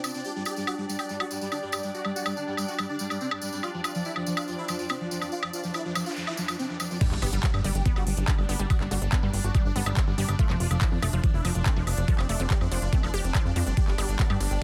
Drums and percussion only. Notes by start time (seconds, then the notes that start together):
0.04 tambourine, high woodblock
0.14 tambourine
0.24 tambourine
0.45 tambourine, high woodblock
0.56 tambourine
0.67 tambourine, high woodblock
0.89 tambourine
0.99 tambourine, high woodblock
1.09 tambourine
1.20 high woodblock
1.31 tambourine
1.41 tambourine
1.52 tambourine, high woodblock
1.72 tambourine, high woodblock
1.83 tambourine
1.95 tambourine
2.05 high woodblock
2.16 tambourine
2.25 tambourine, high woodblock
2.37 tambourine
2.57 tambourine, high woodblock
2.68 tambourine
2.79 tambourine, high woodblock
2.99 tambourine
3.10 tambourine, high woodblock
3.21 tambourine
3.31 high woodblock
3.42 tambourine
3.53 tambourine
3.63 tambourine, high woodblock
3.84 tambourine, high woodblock
3.95 tambourine
4.05 tambourine
4.16 high woodblock
4.26 tambourine
4.37 tambourine, high woodblock
4.48 tambourine
4.68 tambourine, high woodblock
4.79 tambourine
4.89 tambourine, high woodblock
5.11 tambourine
5.22 tambourine, high woodblock
5.32 tambourine
5.43 high woodblock
5.53 tambourine
5.64 tambourine
5.74 tambourine, high woodblock
5.95 tambourine, high woodblock
6.06 tambourine
6.16 tambourine
6.27 high woodblock
6.37 tambourine
6.48 tambourine, high woodblock
6.59 tambourine
6.80 tambourine, high woodblock
6.91 tambourine
7.01 kick, closed hi-hat, crash
7.12 clap
7.22 open hi-hat, high woodblock
7.33 closed hi-hat
7.43 kick, clap, closed hi-hat
7.54 high woodblock
7.64 open hi-hat
7.75 closed hi-hat
7.86 kick, closed hi-hat
7.96 high woodblock
8.07 open hi-hat
8.17 closed hi-hat
8.28 kick, clap, closed hi-hat
8.38 high woodblock
8.49 open hi-hat
8.60 closed hi-hat
8.70 kick, closed hi-hat, high woodblock
8.81 clap
8.91 open hi-hat
9.02 closed hi-hat
9.12 kick, clap, closed hi-hat, high woodblock
9.34 open hi-hat
9.44 closed hi-hat
9.55 kick, closed hi-hat, high woodblock
9.76 open hi-hat
9.86 closed hi-hat, high woodblock
9.97 kick, clap, closed hi-hat
10.18 open hi-hat
10.29 closed hi-hat, high woodblock
10.39 kick, closed hi-hat
10.50 clap
10.60 open hi-hat
10.71 closed hi-hat, high woodblock
10.81 kick, clap, closed hi-hat
11.02 open hi-hat, high woodblock
11.13 closed hi-hat
11.24 kick, closed hi-hat
11.45 open hi-hat, high woodblock
11.55 closed hi-hat
11.66 kick, clap, closed hi-hat
11.87 open hi-hat, high woodblock
11.98 closed hi-hat
12.08 kick, closed hi-hat
12.19 clap, high woodblock
12.29 open hi-hat
12.40 closed hi-hat
12.50 kick, clap, closed hi-hat
12.61 high woodblock
12.72 open hi-hat
12.82 closed hi-hat
12.93 kick, closed hi-hat
13.03 high woodblock
13.14 open hi-hat
13.24 closed hi-hat
13.35 kick, clap, closed hi-hat, high woodblock
13.56 open hi-hat
13.67 closed hi-hat
13.77 kick, closed hi-hat, ride
13.88 clap
13.98 open hi-hat, ride, high woodblock
14.09 closed hi-hat
14.19 kick, clap, closed hi-hat, ride
14.30 high woodblock
14.41 open hi-hat, ride
14.51 closed hi-hat